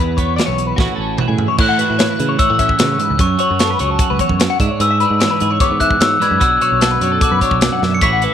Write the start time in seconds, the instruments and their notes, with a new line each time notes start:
Already playing: clean electric guitar E2 E3 E4 B4
0.00 picked electric bass E2
0.17 clean electric guitar B3 C#5, kick, closed hi-hat
0.36 clean electric guitar E3 C#4 D5, snare, closed hi-hat
0.46 picked electric bass B1, clean electric guitar C#5
0.58 closed hi-hat
0.67 clean electric guitar B4
0.76 picked electric bass A1, clean electric guitar A2 E3 C#4 F#4, kick, snare
0.81 clean electric guitar E4 F#4
0.96 picked electric bass A1, clean electric guitar A4
1.01 clean electric guitar C#4
1.18 clean electric guitar E3 E4 B4, mid tom
1.28 picked electric bass A2, clean electric guitar G#4
1.38 floor tom
1.48 clean electric guitar C#5
1.58 picked electric bass A2, clean electric guitar A2 E4 C#5, glockenspiel F#6, kick, crash
1.69 clean electric guitar F#5
1.78 clean electric guitar F#4 B4, closed hi-hat
1.90 picked electric bass A2
1.99 clean electric guitar E4 C#5, snare, closed hi-hat
2.09 clean electric guitar B4
2.19 picked electric bass C#3, clean electric guitar E3, closed hi-hat
2.29 clean electric guitar C#5
2.39 clean electric guitar E4 C#5, glockenspiel E6, kick, closed hi-hat
2.50 picked electric bass A2, clean electric guitar F#4
2.59 clean electric guitar C#4 E5, kick, closed hi-hat
2.69 kick
2.79 clean electric guitar A2 C#5, picked electric bass C#3, snare, closed hi-hat
2.98 clean electric guitar G#2 B4, closed hi-hat
3.10 picked electric bass C#2
3.18 clean electric guitar F#2 C#4, picked electric bass F#2, glockenspiel C#6, kick, closed hi-hat
3.39 clean electric guitar F#4 C#5, closed hi-hat
3.51 picked electric bass F#2
3.59 clean electric guitar C#4 A4, glockenspiel C#6, snare, closed hi-hat
3.70 clean electric guitar B4
3.79 picked electric bass C#2, clean electric guitar F#3 C#5, closed hi-hat
3.90 clean electric guitar A4
3.99 clean electric guitar F#4, kick, closed hi-hat
4.10 picked electric bass C#2, clean electric guitar B4
4.19 clean electric guitar E2 C#5, kick, closed hi-hat
4.29 picked electric bass F#2, kick
4.39 clean electric guitar F#2, snare, closed hi-hat
4.50 clean electric guitar F#5
4.60 clean electric guitar G#2 D4 E5, picked electric bass G#2, kick, closed hi-hat
4.71 clean electric guitar C#5
4.80 picked electric bass G#2, clean electric guitar G#4 B4, glockenspiel E6, closed hi-hat
4.91 clean electric guitar E5
5.00 clean electric guitar D4 B4, closed hi-hat
5.10 picked electric bass G#2
5.20 clean electric guitar E3 C#5, snare, closed hi-hat
5.31 clean electric guitar B4
5.40 picked electric bass G#2, clean electric guitar G#4, closed hi-hat
5.50 clean electric guitar C#5
5.60 clean electric guitar B3 C#5, glockenspiel D6, kick, closed hi-hat
5.71 picked electric bass G#2
5.80 clean electric guitar G#2 E5, glockenspiel F#6, kick, closed hi-hat
5.91 kick
6.01 picked electric bass G#2, clean electric guitar C#5, glockenspiel E6, snare, closed hi-hat
6.20 clean electric guitar G#2 D4 B4, glockenspiel G#6, snare, closed hi-hat
6.31 picked electric bass F#2
6.40 picked electric bass B1, clean electric guitar B2 F#3 D4 F#4, glockenspiel E6, kick, closed hi-hat
6.61 clean electric guitar F#4 C#5, closed hi-hat
6.72 picked electric bass B1
6.81 clean electric guitar F#4 A4, snare, closed hi-hat
6.91 clean electric guitar B4
7.01 picked electric bass F#2, clean electric guitar F#3 C#5, closed hi-hat
7.12 clean electric guitar A4
7.21 clean electric guitar F#4, glockenspiel D6, kick, closed hi-hat
7.32 picked electric bass F#2, clean electric guitar B4
7.41 clean electric guitar D4 C#5, kick, closed hi-hat
7.51 picked electric bass B1, kick
7.61 clean electric guitar F#2, snare, closed hi-hat
7.73 clean electric guitar F#5
7.82 picked electric bass F#2, clean electric guitar E5, snare
7.93 clean electric guitar C#5, glockenspiel C#7
8.01 picked electric bass A1, clean electric guitar A2 E3 C#4 E4 F#4 C#5, glockenspiel B6, kick, closed hi-hat
8.13 clean electric guitar F#5
8.22 clean electric guitar E4 B4, closed hi-hat